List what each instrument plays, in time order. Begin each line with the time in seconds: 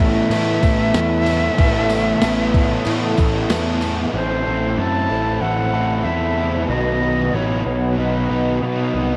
Already playing: picked electric bass A1, overdriven electric guitar A2 E3 A3 B3 E4 A4, ambient pad E4 B4 A5, flute E5
0.00 clean electric guitar A4, crash
0.30 picked electric bass A2, overdriven electric guitar A2 E3 A3 B3 E4 A4, tambourine, crash
0.62 picked electric bass A1, overdriven electric guitar A3 B3 E4 A4, kick, tambourine, crash
0.94 picked electric bass E2, overdriven electric guitar E3 A3 B3 A4, clean electric guitar E4, snare, tambourine, crash
1.26 overdriven electric guitar B3 E4 A4, tambourine, crash
1.57 picked electric bass A1, overdriven electric guitar A2 E3 A3 B3 E4 A4, ambient pad D#6, kick, tambourine, crash
1.89 clean electric guitar B3, snare, tambourine, crash
2.21 picked electric bass A1, overdriven electric guitar E3 A3 B3 E4 A4, snare, tambourine, crash
2.54 clean electric guitar A4, kick, tambourine, crash
2.85 overdriven electric guitar A2 E3 A3 B3 E4 A4, picked electric bass A2, tambourine, crash
3.17 picked electric bass A1, overdriven electric guitar A3 B3 E4 A4, kick, tambourine, crash
3.49 picked electric bass E2, overdriven electric guitar E3 A3 B3 A4, clean electric guitar E4, snare, tambourine, crash
3.81 overdriven electric guitar B3 E4 A4, tambourine, crash
4.13 picked electric bass A1, overdriven electric guitar A2 A3 C4 E4 A4, flute C5, ambient pad A5 B5 E6
4.45 picked electric bass A1, overdriven electric guitar C4 E4 A4
4.77 picked electric bass F#2, overdriven electric guitar A3 C4 E4 A4, flute A5
5.10 picked electric bass A1, overdriven electric guitar C4 E4 A4
5.41 picked electric bass A1, overdriven electric guitar A2 A3 C4 E4 A4, clean electric guitar B4, flute F#5
5.73 overdriven electric guitar C4 E4 A4
6.04 picked electric bass E2, overdriven electric guitar A3 C4 E4 A4, flute E5
6.37 overdriven electric guitar C4 E4 A4
6.68 picked electric bass B1, overdriven electric guitar B2 D#3 F#3, ambient pad B4 D#5 F#5 D#6, flute D#5
6.72 overdriven electric guitar B3 D#4 B4
7.02 overdriven electric guitar F#3 B3 D#4 B4
7.33 picked electric bass A1, overdriven electric guitar F#3 B3 D#4 B4, flute C#5
7.65 picked electric bass B1, overdriven electric guitar F#3 B3 D#4 B4, flute C#5
7.97 picked electric bass B1, overdriven electric guitar B2 D#3 F#3 B3 D#4 B4, flute B4
8.29 picked electric bass B1, overdriven electric guitar F#3 B3 D#4 B4
8.62 picked electric bass B2, overdriven electric guitar F#3 B3 D#4 B4
8.94 picked electric bass C2, overdriven electric guitar F#3 B3 D#4 B4